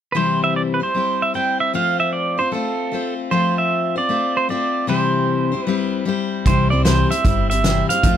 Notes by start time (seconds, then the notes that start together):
0.12 C3 E3 G3 C4 E4 B4
0.16 C5
0.44 E5
0.56 D5
0.74 B4
0.80 G3 C4 E4 C5
0.95 G3 C4 E4 C5
1.22 E5
1.34 G3 C4 E4 C5 G5
1.60 E5
1.74 F3 A3 C4 F4 C5 F5
2.00 E5
2.13 D5
2.38 C4 F4 C5
2.52 A3 C4 F4 A4 C5
2.92 A3 C4 F4 C5
3.31 F3 A3 C4 F4 C5
3.58 E5
3.96 C4 F4 C5 D5
4.09 A3 C4 F4 C5
4.37 C5
4.49 A3 C4 F4 C5 D5
4.87 C3 E3 G3 C4 E4 C5
5.52 G3 C4 E4 C5
5.64 G3 C4 B4
5.68 E4 C5
6.05 G3 C4 E4 C5
6.46 C2 C3 E3 G3 C4 E4 C5, kick, closed hi-hat
6.70 G3 C4 E4 C5 D5
6.85 C3 E3 G3 C4 E4 C5, snare, closed hi-hat
7.10 G3 C4 E4 C5 E5, closed hi-hat
7.25 G1 G3 C4 E4 C5, kick, closed hi-hat
7.50 G3 C4 E4 C5 E5, closed hi-hat
7.64 C3 E3 G3 C4 E4 C5, snare, closed hi-hat
7.89 G3 C4 E4 C5 F5, closed hi-hat
8.03 F2 F3 A3 C4 F4 C5, kick, closed hi-hat